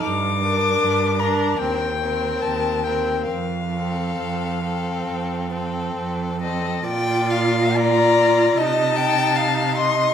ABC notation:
X:1
M:4/4
L:1/8
Q:1/4=71
K:Bb
V:1 name="Violin"
d'3 b g2 a g | f6 z e | d2 b2 a3 c' |]
V:2 name="Violin"
z B2 B B B2 B | z A2 A2 A2 A | g f d2 e g f e |]
V:3 name="Viola"
z D2 D C C2 C | z C2 C2 C2 C | F2 F2 E4 |]
V:4 name="Cello" clef=bass
G,,2 G,,2 E,,2 E,,2 | F,,2 F,,2 F,,2 F,,2 | B,,4 C,4 |]